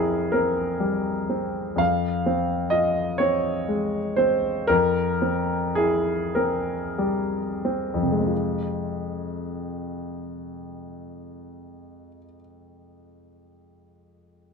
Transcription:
0, 0, Header, 1, 2, 480
1, 0, Start_track
1, 0, Key_signature, -4, "minor"
1, 0, Tempo, 950872
1, 904, Time_signature, 12, 3, 24, 8
1, 1861, Tempo, 996678
1, 2341, Tempo, 1088929
1, 2821, Tempo, 1200000
1, 3301, Tempo, 1327434
1, 3781, Tempo, 1212121
1, 4261, Tempo, 1192843
1, 5701, Tempo, 1151631
1, 6304, End_track
2, 0, Start_track
2, 0, Title_t, "Grand piano"
2, 0, Program_c, 0, 0
2, 0, Control_c, 0, 64, 127
2, 0, Note_on_c, 0, 41, 41
2, 0, Note_on_c, 0, 60, 31
2, 0, Note_on_c, 0, 64, 34
2, 0, Note_on_c, 0, 68, 51
2, 0, Note_on_c, 0, 70, 60
2, 81, Note_off_c, 0, 60, 0
2, 161, Note_off_c, 0, 70, 0
2, 161, Note_on_c, 0, 70, 51
2, 165, Note_off_c, 0, 68, 0
2, 169, Note_on_c, 0, 60, 33
2, 310, Note_off_c, 0, 64, 0
2, 404, Note_on_c, 0, 55, 29
2, 556, Note_off_c, 0, 60, 0
2, 654, Note_on_c, 0, 60, 29
2, 804, Note_off_c, 0, 55, 0
2, 880, Note_off_c, 0, 41, 0
2, 888, Note_on_c, 0, 41, 41
2, 898, Note_off_c, 0, 70, 0
2, 900, Note_on_c, 0, 77, 64
2, 902, Note_off_c, 0, 60, 0
2, 915, Control_c, 0, 64, 0
2, 1021, Control_c, 0, 64, 127
2, 1142, Note_on_c, 0, 60, 36
2, 1364, Note_on_c, 0, 75, 59
2, 1369, Note_on_c, 0, 65, 39
2, 1375, Note_off_c, 0, 77, 0
2, 1521, Note_off_c, 0, 60, 0
2, 1605, Note_on_c, 0, 73, 61
2, 1611, Note_off_c, 0, 75, 0
2, 1615, Note_on_c, 0, 60, 34
2, 1760, Note_off_c, 0, 65, 0
2, 1860, Note_on_c, 0, 56, 35
2, 2001, Note_off_c, 0, 60, 0
2, 2091, Note_on_c, 0, 72, 60
2, 2092, Note_off_c, 0, 73, 0
2, 2099, Note_on_c, 0, 60, 37
2, 2242, Note_off_c, 0, 56, 0
2, 2315, Note_off_c, 0, 41, 0
2, 2337, Note_on_c, 0, 70, 69
2, 2339, Note_off_c, 0, 72, 0
2, 2342, Note_off_c, 0, 60, 0
2, 2345, Note_on_c, 0, 41, 45
2, 2351, Control_c, 0, 64, 0
2, 2452, Control_c, 0, 64, 127
2, 2577, Note_on_c, 0, 60, 32
2, 2813, Note_on_c, 0, 68, 57
2, 2819, Note_off_c, 0, 70, 0
2, 2821, Note_on_c, 0, 64, 34
2, 2959, Note_off_c, 0, 60, 0
2, 3050, Note_off_c, 0, 68, 0
2, 3052, Note_on_c, 0, 70, 50
2, 3057, Note_on_c, 0, 60, 31
2, 3200, Note_off_c, 0, 64, 0
2, 3305, Note_on_c, 0, 55, 35
2, 3447, Note_off_c, 0, 60, 0
2, 3545, Note_on_c, 0, 60, 32
2, 3646, Note_off_c, 0, 41, 0
2, 3651, Note_on_c, 0, 41, 34
2, 3683, Note_on_c, 0, 48, 27
2, 3693, Note_off_c, 0, 55, 0
2, 3715, Note_on_c, 0, 56, 28
2, 3740, Note_off_c, 0, 60, 0
2, 3745, Note_on_c, 0, 60, 27
2, 3770, Note_on_c, 0, 65, 35
2, 3781, Note_off_c, 0, 70, 0
2, 3792, Control_c, 0, 64, 0
2, 3886, Control_c, 0, 64, 127
2, 5292, Note_off_c, 0, 41, 0
2, 5327, Note_off_c, 0, 48, 0
2, 5363, Note_off_c, 0, 56, 0
2, 5397, Note_off_c, 0, 60, 0
2, 5424, Note_off_c, 0, 65, 0
2, 6304, End_track
0, 0, End_of_file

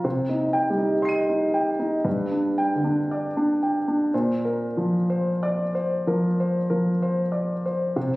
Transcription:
0, 0, Header, 1, 2, 480
1, 0, Start_track
1, 0, Tempo, 1003344
1, 23, Time_signature, 4, 2, 24, 8
1, 984, Tempo, 1032702
1, 1944, Tempo, 960000
1, 3964, End_track
2, 0, Start_track
2, 0, Title_t, "Grand piano"
2, 0, Program_c, 0, 0
2, 0, Control_c, 0, 64, 127
2, 21, Note_on_c, 0, 72, 48
2, 22, Note_on_c, 0, 48, 54
2, 32, Control_c, 0, 64, 0
2, 110, Control_c, 0, 64, 127
2, 140, Note_on_c, 0, 63, 48
2, 210, Note_off_c, 0, 72, 0
2, 254, Note_on_c, 0, 79, 59
2, 331, Note_off_c, 0, 63, 0
2, 336, Note_on_c, 0, 55, 41
2, 372, Note_on_c, 0, 63, 46
2, 449, Note_off_c, 0, 79, 0
2, 489, Note_on_c, 0, 75, 49
2, 489, Note_on_c, 0, 84, 37
2, 503, Note_on_c, 0, 96, 36
2, 520, Note_on_c, 0, 99, 38
2, 569, Note_off_c, 0, 63, 0
2, 595, Note_off_c, 0, 55, 0
2, 619, Note_on_c, 0, 63, 46
2, 688, Note_off_c, 0, 75, 0
2, 736, Note_on_c, 0, 79, 51
2, 812, Note_off_c, 0, 63, 0
2, 859, Note_on_c, 0, 63, 45
2, 933, Note_off_c, 0, 79, 0
2, 959, Note_off_c, 0, 84, 0
2, 964, Note_off_c, 0, 48, 0
2, 967, Note_off_c, 0, 96, 0
2, 975, Note_off_c, 0, 99, 0
2, 979, Note_on_c, 0, 43, 59
2, 979, Note_on_c, 0, 71, 49
2, 983, Note_off_c, 0, 63, 0
2, 993, Control_c, 0, 64, 0
2, 1069, Control_c, 0, 64, 127
2, 1103, Note_on_c, 0, 62, 44
2, 1173, Note_off_c, 0, 71, 0
2, 1227, Note_on_c, 0, 79, 58
2, 1297, Note_off_c, 0, 62, 0
2, 1307, Note_on_c, 0, 50, 39
2, 1350, Note_on_c, 0, 62, 43
2, 1419, Note_off_c, 0, 79, 0
2, 1475, Note_on_c, 0, 74, 50
2, 1540, Note_off_c, 0, 62, 0
2, 1563, Note_off_c, 0, 50, 0
2, 1594, Note_on_c, 0, 62, 44
2, 1664, Note_off_c, 0, 74, 0
2, 1714, Note_on_c, 0, 79, 45
2, 1784, Note_off_c, 0, 62, 0
2, 1831, Note_on_c, 0, 62, 42
2, 1901, Note_off_c, 0, 79, 0
2, 1922, Note_off_c, 0, 43, 0
2, 1945, Note_off_c, 0, 62, 0
2, 1953, Control_c, 0, 64, 0
2, 1953, Note_on_c, 0, 46, 57
2, 1954, Note_on_c, 0, 72, 49
2, 2031, Control_c, 0, 64, 127
2, 2107, Note_on_c, 0, 70, 52
2, 2208, Note_off_c, 0, 72, 0
2, 2269, Note_on_c, 0, 53, 44
2, 2364, Note_off_c, 0, 70, 0
2, 2432, Note_on_c, 0, 72, 49
2, 2528, Note_off_c, 0, 53, 0
2, 2597, Note_on_c, 0, 74, 58
2, 2690, Note_off_c, 0, 72, 0
2, 2756, Note_off_c, 0, 74, 0
2, 2757, Note_on_c, 0, 72, 52
2, 2898, Note_off_c, 0, 46, 0
2, 2919, Note_on_c, 0, 53, 48
2, 2921, Note_on_c, 0, 70, 54
2, 3010, Note_off_c, 0, 72, 0
2, 3083, Note_on_c, 0, 72, 49
2, 3169, Note_off_c, 0, 53, 0
2, 3170, Note_off_c, 0, 70, 0
2, 3232, Note_on_c, 0, 70, 47
2, 3234, Note_on_c, 0, 53, 45
2, 3329, Note_off_c, 0, 72, 0
2, 3395, Note_on_c, 0, 72, 50
2, 3483, Note_off_c, 0, 70, 0
2, 3484, Note_off_c, 0, 53, 0
2, 3542, Note_on_c, 0, 74, 43
2, 3644, Note_off_c, 0, 72, 0
2, 3703, Note_off_c, 0, 74, 0
2, 3711, Note_on_c, 0, 72, 51
2, 3857, Note_off_c, 0, 72, 0
2, 3864, Note_on_c, 0, 48, 53
2, 3865, Note_on_c, 0, 72, 51
2, 3873, Control_c, 0, 64, 0
2, 3941, Control_c, 0, 64, 127
2, 3964, Note_off_c, 0, 48, 0
2, 3964, Note_off_c, 0, 72, 0
2, 3964, End_track
0, 0, End_of_file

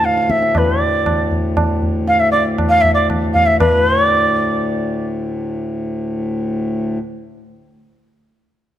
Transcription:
0, 0, Header, 1, 4, 480
1, 0, Start_track
1, 0, Tempo, 506329
1, 526, Time_signature, 3, 2, 24, 8
1, 3882, Tempo, 499168
1, 8393, End_track
2, 0, Start_track
2, 0, Title_t, "Bansuri"
2, 0, Program_c, 0, 73
2, 43, Note_on_c, 0, 77, 99
2, 285, Note_on_c, 0, 76, 96
2, 299, Note_off_c, 0, 77, 0
2, 543, Note_on_c, 0, 71, 86
2, 557, Note_off_c, 0, 76, 0
2, 771, Note_off_c, 0, 71, 0
2, 771, Note_on_c, 0, 74, 86
2, 1258, Note_off_c, 0, 74, 0
2, 1968, Note_on_c, 0, 77, 115
2, 2081, Note_on_c, 0, 76, 98
2, 2095, Note_off_c, 0, 77, 0
2, 2185, Note_off_c, 0, 76, 0
2, 2191, Note_on_c, 0, 74, 93
2, 2311, Note_off_c, 0, 74, 0
2, 2549, Note_on_c, 0, 77, 118
2, 2662, Note_on_c, 0, 76, 107
2, 2677, Note_off_c, 0, 77, 0
2, 2780, Note_off_c, 0, 76, 0
2, 2785, Note_on_c, 0, 74, 83
2, 2907, Note_off_c, 0, 74, 0
2, 3159, Note_on_c, 0, 77, 113
2, 3278, Note_on_c, 0, 76, 100
2, 3292, Note_off_c, 0, 77, 0
2, 3402, Note_off_c, 0, 76, 0
2, 3406, Note_on_c, 0, 71, 99
2, 3643, Note_off_c, 0, 71, 0
2, 3643, Note_on_c, 0, 72, 99
2, 3842, Note_off_c, 0, 72, 0
2, 3842, Note_on_c, 0, 74, 99
2, 4809, Note_off_c, 0, 74, 0
2, 8393, End_track
3, 0, Start_track
3, 0, Title_t, "Harmonium"
3, 0, Program_c, 1, 20
3, 0, Note_on_c, 1, 38, 84
3, 0, Note_on_c, 1, 45, 82
3, 3397, Note_off_c, 1, 38, 0
3, 3398, Note_off_c, 1, 45, 0
3, 3411, Note_on_c, 1, 38, 83
3, 3412, Note_on_c, 1, 45, 84
3, 6664, Note_off_c, 1, 38, 0
3, 6665, Note_off_c, 1, 45, 0
3, 8393, End_track
4, 0, Start_track
4, 0, Title_t, "Tabla"
4, 37, Note_on_c, 9, 62, 83
4, 131, Note_off_c, 9, 62, 0
4, 165, Note_on_c, 9, 62, 71
4, 260, Note_off_c, 9, 62, 0
4, 281, Note_on_c, 9, 37, 72
4, 375, Note_off_c, 9, 37, 0
4, 402, Note_on_c, 9, 62, 70
4, 497, Note_off_c, 9, 62, 0
4, 520, Note_on_c, 9, 60, 96
4, 520, Note_on_c, 9, 64, 101
4, 614, Note_off_c, 9, 60, 0
4, 614, Note_off_c, 9, 64, 0
4, 1007, Note_on_c, 9, 60, 95
4, 1007, Note_on_c, 9, 64, 78
4, 1102, Note_off_c, 9, 60, 0
4, 1102, Note_off_c, 9, 64, 0
4, 1247, Note_on_c, 9, 64, 64
4, 1342, Note_off_c, 9, 64, 0
4, 1487, Note_on_c, 9, 60, 91
4, 1487, Note_on_c, 9, 64, 81
4, 1582, Note_off_c, 9, 60, 0
4, 1582, Note_off_c, 9, 64, 0
4, 1729, Note_on_c, 9, 64, 61
4, 1823, Note_off_c, 9, 64, 0
4, 1968, Note_on_c, 9, 62, 82
4, 2062, Note_off_c, 9, 62, 0
4, 2214, Note_on_c, 9, 62, 71
4, 2309, Note_off_c, 9, 62, 0
4, 2450, Note_on_c, 9, 60, 103
4, 2450, Note_on_c, 9, 64, 83
4, 2545, Note_off_c, 9, 60, 0
4, 2545, Note_off_c, 9, 64, 0
4, 2690, Note_on_c, 9, 64, 57
4, 2785, Note_off_c, 9, 64, 0
4, 2937, Note_on_c, 9, 60, 85
4, 2937, Note_on_c, 9, 64, 81
4, 3032, Note_off_c, 9, 60, 0
4, 3032, Note_off_c, 9, 64, 0
4, 3178, Note_on_c, 9, 64, 60
4, 3272, Note_off_c, 9, 64, 0
4, 3417, Note_on_c, 9, 60, 117
4, 3417, Note_on_c, 9, 64, 99
4, 3512, Note_off_c, 9, 60, 0
4, 3512, Note_off_c, 9, 64, 0
4, 8393, End_track
0, 0, End_of_file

